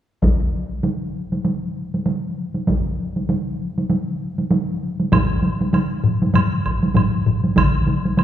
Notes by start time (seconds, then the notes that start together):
0.22 taiko, taiko high
0.83 taiko high
1.32 taiko high
1.45 taiko high
1.94 taiko high
2.06 taiko high
2.54 taiko high
2.67 taiko, taiko high
3.16 taiko high
3.29 taiko high
3.78 taiko high
3.90 taiko high
4.38 taiko high
4.51 taiko high
5.00 taiko high
5.12 taiko, taiko low-mid, taiko high, high woodblock
5.42 taiko high
5.61 taiko high
5.73 taiko high, high woodblock
6.04 taiko low-mid
6.22 taiko high
6.34 taiko low-mid, taiko high, high woodblock
6.66 taiko, high woodblock
6.83 taiko high
6.95 taiko, taiko low-mid, taiko high, high woodblock
7.26 taiko low-mid
7.44 taiko high
7.56 taiko, taiko mid, taiko high, high woodblock
7.87 taiko high
8.05 taiko high
8.17 taiko high, high woodblock